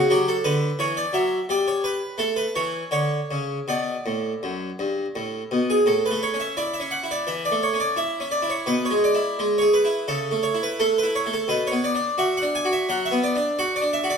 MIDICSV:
0, 0, Header, 1, 2, 480
1, 0, Start_track
1, 0, Key_signature, 2, "major"
1, 0, Tempo, 696056
1, 69, Time_signature, 4, 2, 24, 8
1, 1510, Tempo, 737101
1, 3909, Key_signature, 3, "major"
1, 3910, Tempo, 700117
1, 9601, End_track
2, 0, Start_track
2, 0, Title_t, "Harpsichord"
2, 0, Program_c, 0, 6
2, 0, Note_on_c, 0, 66, 89
2, 70, Note_on_c, 0, 54, 70
2, 74, Note_off_c, 0, 66, 0
2, 74, Note_on_c, 0, 67, 87
2, 190, Note_off_c, 0, 67, 0
2, 195, Note_on_c, 0, 69, 88
2, 240, Note_off_c, 0, 54, 0
2, 306, Note_on_c, 0, 71, 95
2, 308, Note_on_c, 0, 50, 65
2, 309, Note_off_c, 0, 69, 0
2, 477, Note_off_c, 0, 50, 0
2, 543, Note_off_c, 0, 71, 0
2, 545, Note_on_c, 0, 52, 60
2, 550, Note_on_c, 0, 73, 93
2, 665, Note_off_c, 0, 73, 0
2, 670, Note_on_c, 0, 74, 79
2, 716, Note_off_c, 0, 52, 0
2, 780, Note_on_c, 0, 54, 53
2, 786, Note_off_c, 0, 74, 0
2, 786, Note_on_c, 0, 76, 81
2, 955, Note_off_c, 0, 54, 0
2, 990, Note_off_c, 0, 76, 0
2, 1030, Note_on_c, 0, 55, 63
2, 1038, Note_on_c, 0, 74, 92
2, 1152, Note_off_c, 0, 74, 0
2, 1156, Note_on_c, 0, 73, 81
2, 1269, Note_on_c, 0, 71, 81
2, 1272, Note_off_c, 0, 73, 0
2, 1378, Note_off_c, 0, 55, 0
2, 1503, Note_on_c, 0, 57, 65
2, 1510, Note_on_c, 0, 69, 86
2, 1511, Note_off_c, 0, 71, 0
2, 1623, Note_on_c, 0, 71, 70
2, 1626, Note_off_c, 0, 69, 0
2, 1674, Note_off_c, 0, 57, 0
2, 1742, Note_off_c, 0, 71, 0
2, 1748, Note_on_c, 0, 73, 78
2, 1749, Note_on_c, 0, 52, 60
2, 1921, Note_off_c, 0, 52, 0
2, 1977, Note_off_c, 0, 73, 0
2, 1980, Note_on_c, 0, 50, 58
2, 1984, Note_on_c, 0, 73, 83
2, 2159, Note_off_c, 0, 50, 0
2, 2237, Note_on_c, 0, 49, 57
2, 2411, Note_off_c, 0, 49, 0
2, 2475, Note_off_c, 0, 73, 0
2, 2480, Note_on_c, 0, 47, 55
2, 2485, Note_on_c, 0, 74, 63
2, 2653, Note_off_c, 0, 47, 0
2, 2727, Note_on_c, 0, 45, 53
2, 2897, Note_off_c, 0, 45, 0
2, 2969, Note_on_c, 0, 42, 59
2, 3138, Note_off_c, 0, 42, 0
2, 3206, Note_on_c, 0, 43, 53
2, 3373, Note_off_c, 0, 43, 0
2, 3441, Note_on_c, 0, 45, 59
2, 3611, Note_off_c, 0, 45, 0
2, 3674, Note_on_c, 0, 47, 51
2, 3678, Note_off_c, 0, 74, 0
2, 3796, Note_on_c, 0, 68, 60
2, 3844, Note_off_c, 0, 47, 0
2, 3901, Note_on_c, 0, 45, 61
2, 3906, Note_on_c, 0, 69, 67
2, 3911, Note_off_c, 0, 68, 0
2, 4029, Note_off_c, 0, 69, 0
2, 4035, Note_on_c, 0, 71, 74
2, 4062, Note_off_c, 0, 45, 0
2, 4068, Note_on_c, 0, 57, 47
2, 4152, Note_on_c, 0, 73, 87
2, 4154, Note_off_c, 0, 71, 0
2, 4228, Note_on_c, 0, 61, 42
2, 4239, Note_off_c, 0, 57, 0
2, 4269, Note_on_c, 0, 76, 73
2, 4273, Note_off_c, 0, 73, 0
2, 4387, Note_on_c, 0, 64, 49
2, 4388, Note_on_c, 0, 74, 84
2, 4391, Note_off_c, 0, 76, 0
2, 4399, Note_off_c, 0, 61, 0
2, 4500, Note_on_c, 0, 76, 72
2, 4511, Note_off_c, 0, 74, 0
2, 4544, Note_on_c, 0, 61, 41
2, 4559, Note_off_c, 0, 64, 0
2, 4619, Note_on_c, 0, 78, 84
2, 4628, Note_off_c, 0, 76, 0
2, 4705, Note_on_c, 0, 64, 36
2, 4718, Note_off_c, 0, 61, 0
2, 4748, Note_off_c, 0, 78, 0
2, 4757, Note_on_c, 0, 74, 82
2, 4866, Note_on_c, 0, 52, 43
2, 4870, Note_on_c, 0, 76, 84
2, 4877, Note_off_c, 0, 74, 0
2, 4879, Note_off_c, 0, 64, 0
2, 4991, Note_on_c, 0, 74, 82
2, 4993, Note_off_c, 0, 76, 0
2, 5033, Note_on_c, 0, 57, 45
2, 5039, Note_off_c, 0, 52, 0
2, 5113, Note_off_c, 0, 74, 0
2, 5113, Note_on_c, 0, 73, 81
2, 5186, Note_on_c, 0, 61, 42
2, 5200, Note_off_c, 0, 57, 0
2, 5229, Note_on_c, 0, 74, 83
2, 5233, Note_off_c, 0, 73, 0
2, 5343, Note_on_c, 0, 64, 47
2, 5350, Note_off_c, 0, 74, 0
2, 5350, Note_on_c, 0, 76, 100
2, 5356, Note_off_c, 0, 61, 0
2, 5505, Note_on_c, 0, 61, 45
2, 5514, Note_off_c, 0, 64, 0
2, 5581, Note_on_c, 0, 74, 89
2, 5590, Note_off_c, 0, 76, 0
2, 5657, Note_on_c, 0, 64, 46
2, 5676, Note_off_c, 0, 61, 0
2, 5706, Note_off_c, 0, 74, 0
2, 5708, Note_on_c, 0, 73, 79
2, 5822, Note_on_c, 0, 47, 63
2, 5825, Note_off_c, 0, 64, 0
2, 5826, Note_on_c, 0, 71, 93
2, 5831, Note_off_c, 0, 73, 0
2, 5950, Note_off_c, 0, 71, 0
2, 5952, Note_on_c, 0, 73, 74
2, 5984, Note_off_c, 0, 47, 0
2, 5988, Note_on_c, 0, 56, 40
2, 6075, Note_off_c, 0, 73, 0
2, 6080, Note_on_c, 0, 74, 84
2, 6153, Note_on_c, 0, 64, 52
2, 6162, Note_off_c, 0, 56, 0
2, 6321, Note_on_c, 0, 56, 51
2, 6325, Note_off_c, 0, 64, 0
2, 6442, Note_off_c, 0, 74, 0
2, 6451, Note_on_c, 0, 73, 82
2, 6474, Note_on_c, 0, 68, 46
2, 6489, Note_off_c, 0, 56, 0
2, 6556, Note_on_c, 0, 71, 76
2, 6566, Note_off_c, 0, 73, 0
2, 6634, Note_on_c, 0, 64, 43
2, 6645, Note_off_c, 0, 68, 0
2, 6763, Note_off_c, 0, 71, 0
2, 6792, Note_on_c, 0, 49, 60
2, 6794, Note_on_c, 0, 69, 97
2, 6797, Note_off_c, 0, 64, 0
2, 6952, Note_off_c, 0, 49, 0
2, 6952, Note_on_c, 0, 57, 51
2, 7033, Note_on_c, 0, 73, 86
2, 7039, Note_off_c, 0, 69, 0
2, 7112, Note_on_c, 0, 64, 46
2, 7126, Note_off_c, 0, 57, 0
2, 7158, Note_off_c, 0, 73, 0
2, 7170, Note_on_c, 0, 71, 81
2, 7283, Note_on_c, 0, 57, 62
2, 7286, Note_off_c, 0, 64, 0
2, 7286, Note_on_c, 0, 69, 93
2, 7287, Note_off_c, 0, 71, 0
2, 7405, Note_off_c, 0, 69, 0
2, 7412, Note_on_c, 0, 71, 73
2, 7447, Note_on_c, 0, 64, 48
2, 7451, Note_off_c, 0, 57, 0
2, 7527, Note_off_c, 0, 71, 0
2, 7530, Note_on_c, 0, 73, 95
2, 7603, Note_on_c, 0, 57, 53
2, 7612, Note_off_c, 0, 64, 0
2, 7645, Note_off_c, 0, 73, 0
2, 7653, Note_on_c, 0, 69, 80
2, 7754, Note_on_c, 0, 47, 63
2, 7760, Note_on_c, 0, 71, 87
2, 7762, Note_off_c, 0, 57, 0
2, 7767, Note_off_c, 0, 69, 0
2, 7880, Note_off_c, 0, 71, 0
2, 7883, Note_on_c, 0, 73, 90
2, 7912, Note_off_c, 0, 47, 0
2, 7915, Note_on_c, 0, 59, 51
2, 8001, Note_off_c, 0, 73, 0
2, 8002, Note_on_c, 0, 74, 97
2, 8073, Note_on_c, 0, 62, 48
2, 8085, Note_off_c, 0, 59, 0
2, 8232, Note_on_c, 0, 66, 57
2, 8237, Note_on_c, 0, 76, 101
2, 8241, Note_off_c, 0, 74, 0
2, 8245, Note_off_c, 0, 62, 0
2, 8360, Note_off_c, 0, 76, 0
2, 8364, Note_on_c, 0, 78, 88
2, 8396, Note_on_c, 0, 62, 50
2, 8406, Note_off_c, 0, 66, 0
2, 8485, Note_off_c, 0, 78, 0
2, 8487, Note_on_c, 0, 80, 94
2, 8554, Note_on_c, 0, 66, 48
2, 8569, Note_off_c, 0, 62, 0
2, 8607, Note_off_c, 0, 80, 0
2, 8607, Note_on_c, 0, 76, 100
2, 8718, Note_on_c, 0, 54, 60
2, 8724, Note_on_c, 0, 78, 108
2, 8726, Note_off_c, 0, 76, 0
2, 8728, Note_off_c, 0, 66, 0
2, 8833, Note_on_c, 0, 76, 101
2, 8844, Note_off_c, 0, 78, 0
2, 8872, Note_on_c, 0, 59, 55
2, 8889, Note_off_c, 0, 54, 0
2, 8957, Note_off_c, 0, 76, 0
2, 8957, Note_on_c, 0, 74, 94
2, 9040, Note_on_c, 0, 62, 50
2, 9044, Note_off_c, 0, 59, 0
2, 9196, Note_off_c, 0, 74, 0
2, 9198, Note_on_c, 0, 66, 64
2, 9198, Note_on_c, 0, 78, 106
2, 9206, Note_off_c, 0, 62, 0
2, 9316, Note_off_c, 0, 78, 0
2, 9316, Note_on_c, 0, 74, 96
2, 9354, Note_on_c, 0, 62, 52
2, 9364, Note_off_c, 0, 66, 0
2, 9434, Note_off_c, 0, 74, 0
2, 9434, Note_on_c, 0, 76, 102
2, 9507, Note_on_c, 0, 66, 58
2, 9520, Note_off_c, 0, 62, 0
2, 9549, Note_on_c, 0, 74, 95
2, 9552, Note_off_c, 0, 76, 0
2, 9601, Note_off_c, 0, 66, 0
2, 9601, Note_off_c, 0, 74, 0
2, 9601, End_track
0, 0, End_of_file